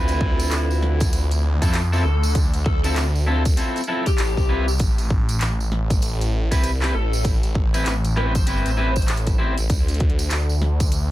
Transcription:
Already playing: D2 C4 E4 F4 B4
0.08 closed hi-hat, tambourine
0.21 D2, kick
0.40 closed hi-hat, tambourine
0.51 D2, clap, closed hi-hat, tambourine
0.71 tambourine
0.82 snare
1.00 kick, closed hi-hat, tambourine
1.13 D2, closed hi-hat, tambourine
1.31 closed hi-hat, tambourine
1.62 F2 C4 E4 F4 A4, kick, closed hi-hat, tambourine
1.73 clap, closed hi-hat, tambourine
1.92 C4 E4 F4 A4, tambourine
2.04 D2 A4
2.23 tambourine
2.35 kick, closed hi-hat, tambourine
2.54 D2, closed hi-hat, tambourine
2.66 A4, kick
2.84 C4 E4 F4 A4, closed hi-hat, tambourine
2.96 D2, clap, closed hi-hat, tambourine
3.15 tambourine
3.27 C4 E4 F4 A4
3.45 kick, closed hi-hat, tambourine
3.57 C4 E4 F4 A4, closed hi-hat, tambourine
3.76 closed hi-hat, tambourine
3.78 closed hi-hat
3.84 closed hi-hat
3.88 C4 E4 F4 A4
4.06 G4, kick, closed hi-hat, tambourine
4.18 A1, clap, closed hi-hat, tambourine
4.37 C2, kick, tambourine
4.49 C4 E4 F4 B4
4.68 tambourine
4.79 A1, kick, closed hi-hat, tambourine
4.98 closed hi-hat, tambourine
5.10 A1, kick
5.29 closed hi-hat, tambourine
5.41 A1, clap, closed hi-hat, tambourine
5.60 tambourine
5.72 snare
5.90 kick, closed hi-hat, tambourine
6.02 A1, closed hi-hat, tambourine
6.21 closed hi-hat, tambourine
6.51 C2 C4 E4 G4 B4, kick, closed hi-hat, tambourine
6.63 closed hi-hat, tambourine
6.82 C4 E4 G4 B4, clap, tambourine
6.94 A1 A4
7.13 tambourine
7.24 kick, closed hi-hat, tambourine
7.43 A1, closed hi-hat, tambourine
7.55 kick
7.74 C4 E4 G4 B4, closed hi-hat, tambourine
7.86 A1, clap, closed hi-hat, tambourine
8.05 closed hi-hat, tambourine
8.16 C4 E4 G4 B4 C5, snare
8.35 kick, closed hi-hat, tambourine
8.46 G1 C4 E4 G4 B4, closed hi-hat, tambourine
8.66 A1, closed hi-hat, tambourine
8.77 C4 E4 G4 B4
8.96 kick, closed hi-hat, tambourine
9.02 closed hi-hat
9.08 clap, closed hi-hat, tambourine
9.17 closed hi-hat
9.27 kick, closed hi-hat, tambourine
9.38 C4 E4 G4 C5
9.58 A1, closed hi-hat, tambourine
9.70 D2, kick, closed hi-hat, tambourine
9.88 closed hi-hat, tambourine
9.94 closed hi-hat
10.00 D2, kick, closed hi-hat
10.10 closed hi-hat
10.19 closed hi-hat, tambourine
10.30 D2, clap, closed hi-hat, tambourine
10.49 tambourine
10.62 snare
10.80 kick, closed hi-hat, tambourine
10.92 D2, closed hi-hat, tambourine

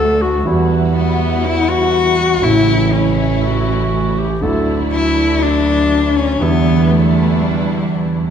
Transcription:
Already playing: D2 D3 F#3 A3 D4 F#4 A4
0.22 F#4
0.45 E2 E3 G3 B3 E4 F#4
0.49 F#4
0.95 B3
1.44 E4
1.69 F#4
2.42 A1 A2 C#3 E3 A3 C#4 E4
2.46 E4
2.93 C#4
3.44 F#4
4.19 G4
4.41 D2 D3 F#3 A3 D4 E4 A4
4.45 E4
4.92 E4
5.42 D4
6.17 C#4
6.38 E2 D3 E3 G3 B3 D4 E4
6.42 E4
6.91 A3
7.41 G3

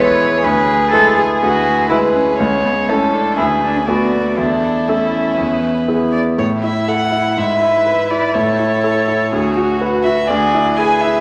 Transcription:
Already playing: E2 G#3 E4 A4 B4 C#5
0.20 G#4
0.43 D2 G#4 B4
0.92 G#3 E4 A4 B4
1.16 G#4
1.41 D2 F#4 B4
1.89 G#3 E4 G#4 B4
2.14 C#4
2.39 C#2 A3 C#5
2.64 B3
2.88 A3 C#4 E4 A4 C#5
3.14 D4
3.37 D2 E4 G#4 B4
3.63 D4
3.76 C#4
3.87 A3 B3 F#4 B4 D5
4.13 A3
4.25 B3
4.36 E2 D4 E4 A4
4.88 A3 C#4 E4 A4
5.38 E2 B4
5.88 B3 E4 G#4
6.12 D5
6.38 A2 E4 C#5
6.63 E4 E5
6.88 A4 F#5
7.12 E4
7.37 G#2 B4 E5
7.62 E4
7.86 B4
8.10 E4 D5
8.34 A2 A4 C#5
8.59 E4
8.84 A4
9.08 E4
9.32 D2 F#4 G#4
9.57 F#4
9.81 F#4 B4
10.04 F#4 E5
10.28 D2 G#4 D5
10.54 E4
10.77 G#4 B4 G#5
11.01 E4 E5

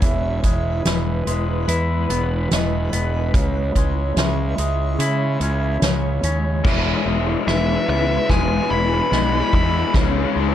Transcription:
Already playing: G#3 E4
0.02 E1 E3 G#3 B4 E5, kick, closed hi-hat
0.44 E1 G#3, kick, closed hi-hat
0.85 E1 E3 B4, snare, closed hi-hat
1.27 E1 G#3, closed hi-hat
1.68 E2 E4 B4, closed hi-hat
2.10 E1 B3, closed hi-hat
2.51 E1 E3 D#5, snare, closed hi-hat
2.93 E1 B3, closed hi-hat
3.34 C#2 C#3 C#5, kick, closed hi-hat
3.75 C#2 G#3, kick, closed hi-hat
4.16 C#2 C#3 E5, snare, closed hi-hat
4.58 C#2 G#3, closed hi-hat
4.99 C#3 E4 E5, closed hi-hat
5.40 C#2 C#4, closed hi-hat
5.82 C#2 C#3 C#5, snare, closed hi-hat
6.23 D#2 C#4, closed hi-hat
6.64 E1 E3 G#3 E4 B4 E5, kick, snare, crash
6.72 E3 G#3
6.79 E3 G#3
6.87 E3 G#3
6.94 E3 G#3
7.02 E1 E3 G#3
7.07 E3 G#3, ride
7.18 E3 G#3
7.25 E3 G#3
7.32 E3 G#3
7.41 E3 G#3
7.47 E1 E3 G#3 B4 E5, snare, ride
7.55 E3 G#3
7.64 E3 G#3
7.71 E3 G#3
7.79 E3 G#3
7.87 C#2 E3 G#3 B3 E5, ride
7.94 E3 G#3
8.02 E3 G#3
8.10 E3 G#3
8.17 E3 G#3
8.25 E3 G#3
8.29 E1 E3 G#3 B4 G#5, kick, snare, ride
8.41 E3 G#3
8.49 E3 G#3
8.55 E3 G#3
8.63 E3 G#3
8.71 E1 E3 G#3 E4 B5, ride
8.79 E3 G#3
8.86 E3 G#3
8.94 E3 G#3
9.01 E3 G#3
9.10 B1 E3 G#3 B3 D#5, snare, ride
9.17 E3 G#3
9.25 E3 G#3
9.32 E3 G#3
9.39 E3 G#3
9.48 E3 G#3
9.53 E2 E3 G#3 E4 B5, kick, ride
9.63 E3 G#3
9.72 E3 G#3
9.78 E3 G#3
9.85 E3 G#3
9.93 C#2 C#3 G#3 C#5, kick, snare, ride
10.02 C#3 G#3
10.09 C#3 G#3
10.16 C#3 G#3
10.24 C#3 G#3
10.32 C#2 C#3 G#3, ride
10.39 C#3 G#3
10.48 C#3 G#3

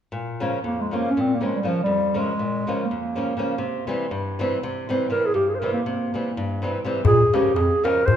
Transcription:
0.12 A#2
0.40 C#3 F3 A#3 C#4
0.63 F2 A#3
0.81 G#3
0.91 C#3 F3 A#3 C#4
0.96 A#3
1.11 C#4
1.17 A#2 C4
1.35 A#3
1.41 C#3 F3 G#3 A#3 C#4
1.56 G3
1.63 C#3 F3 A#3 C#4
1.68 F3
1.83 F2 G3
2.14 C#3 F3 A#3 C#4
2.19 G#3
2.39 A#2
2.67 C#3 F3 A#3 C#4
2.85 A#3
2.91 F2
3.15 C#3 F3 A#3 C#4
3.37 C#3 F3 A#3 C#4
3.58 C3
3.87 C3 E3 G3 C4
4.11 G2
4.39 C3 E3 G3 C4
4.63 C3
4.89 C3 E3 G3 C4
5.10 C3 E3 G3 C4 A#4
5.26 G#4
5.34 G2 G4
5.49 G#4
5.55 C5
5.59 C3 E3 A#4
5.63 G3 C4
5.73 A#3
5.86 C3
6.14 C3 E3 G3 C4
6.37 G2
6.62 C3 E3 G3 C4
6.85 C3 E3 G3 C4
7.05 A#2 G#4, darbuka dum
7.20 darbuka tek
7.33 C#3 F3 A#3 C#4 G4, darbuka tek
7.54 F2 G#4, darbuka tek
7.83 C#3 F3 A#3 C#4 A#4, darbuka tek
8.05 A#2 C5, darbuka dum

